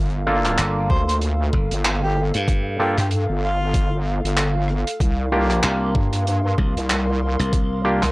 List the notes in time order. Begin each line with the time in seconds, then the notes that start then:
Already playing: G1 A4 F5
0.05 closed hi-hat
0.10 closed hi-hat
0.27 A#3 D4 F4 A4
0.45 clap, closed hi-hat
0.58 G1, clap, closed hi-hat
0.89 D2 C5, kick
1.08 C5, closed hi-hat
1.21 closed hi-hat
1.53 G1, kick
1.71 G1, closed hi-hat
1.85 clap, closed hi-hat
2.03 G4
2.34 G2, closed hi-hat
2.48 kick, closed hi-hat
2.79 A#3 D4 F4 G4 A4
2.98 G2 G4, clap, closed hi-hat
3.11 closed hi-hat
3.29 G1
3.43 F4
3.74 kick, closed hi-hat
4.24 G1, closed hi-hat
4.37 cross-stick, clap, closed hi-hat
4.68 cross-stick
4.87 closed hi-hat
5.00 C2 A#4 C6, kick, closed hi-hat
5.32 A#3 D4 F4 G4
5.43 B1
5.50 clap, closed hi-hat
5.63 C2, clap, closed hi-hat
5.95 G2, kick
6.13 closed hi-hat
6.27 closed hi-hat
6.58 C2, kick
6.76 C2, closed hi-hat
6.90 clap, closed hi-hat
7.39 C2, closed hi-hat
7.53 kick, closed hi-hat
7.85 A#3 D4 F4 G4
8.03 C2, clap, closed hi-hat